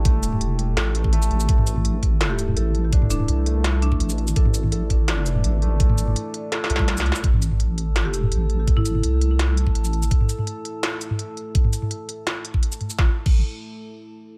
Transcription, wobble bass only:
0.00 0.40 A1 loud
0.41 0.76 E1 loud
0.77 1.30 A1 medium
1.31 1.47 A1 loud
1.49 2.55 A1 loud
2.57 3.27 A1 loud
3.29 3.99 C2 medium
4.00 4.35 A1 loud
4.36 5.43 A1 loud
5.44 5.94 A1 loud
5.94 6.15 G#1 loud
6.70 7.22 C2 loud
7.24 8.30 A1 loud
8.32 8.82 A1 medium
8.82 9.02 G#1 medium
9.03 9.74 C2 loud
9.75 10.10 A1 loud
12.99 13.09 A1 loud
13.26 13.43 A1 loud

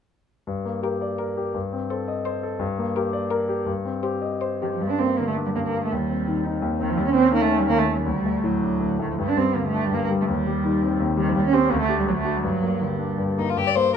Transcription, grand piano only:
0.47 1.52 G2 soft
0.65 0.94 A#3 soft
0.83 1.12 G4 soft
1.01 1.30 D5 soft
1.19 1.47 A#4 soft
1.37 1.55 G4 soft
1.54 2.57 G2 soft
1.73 2.01 C4 soft
1.90 2.19 A4 soft
2.08 2.36 D#5 soft
2.25 2.54 C5 soft
2.43 2.61 A4 soft
2.59 3.64 G2 soft
2.78 3.07 A#3 soft
2.96 3.25 G4 soft
3.13 3.42 D5 soft
3.31 3.60 A#4 soft
3.49 3.68 G4 soft
3.66 4.77 G2 soft
3.85 4.15 C4 soft
4.03 4.34 G4 soft
4.22 4.53 D#5 soft
4.42 4.74 C5 soft
4.62 4.81 G4 soft
4.81 5.54 G2 soft
5.00 5.29 A#3 soft
5.19 5.48 D3 soft
5.37 5.66 D4 soft
5.55 5.90 G2 soft
5.74 5.92 A#3 soft
5.92 6.60 D#2 soft
6.10 6.38 C4 soft
6.28 6.56 D#3 soft
6.45 6.73 D#4 soft
6.62 6.96 D#2 soft
6.80 6.98 C4 soft
6.97 7.68 D#2 medium
7.15 7.44 C#4 soft
7.33 7.62 D#3 soft
7.51 7.80 C#4 soft
7.69 8.05 D#2 soft
7.88 8.06 D#3 soft
8.06 8.79 D2 soft
8.25 8.55 A3 soft
8.44 8.73 A2 soft
8.63 8.93 D4 soft
8.80 9.17 D2 soft
8.99 9.18 A3 soft
9.18 9.90 G2 soft
9.37 9.66 G3 soft
9.55 9.84 D3 soft
9.74 10.03 D4 soft
9.91 10.27 G2 soft
10.10 10.28 G3 soft
10.28 10.99 D#2 soft
10.47 10.75 G3 soft
10.65 10.93 D#3 soft
10.82 11.11 C4 soft
11.00 11.34 D#2 soft
11.17 11.35 G3 soft
11.35 11.69 D#2 medium
11.53 11.68 C#4 soft
11.53 11.69 G4 soft
11.70 12.05 D2 medium
11.89 12.05 D4 soft
11.89 12.05 G4 soft
12.07 12.43 D2 medium
12.25 12.42 D4 soft
12.25 12.42 F#4 soft
12.43 13.17 G2 soft
12.62 12.93 A#3 soft
12.81 13.12 D3 soft
12.99 13.30 D4 soft
13.18 13.56 G2 soft
13.38 13.57 A#3 soft
13.57 13.97 G2 soft
13.76 13.97 A#3 soft

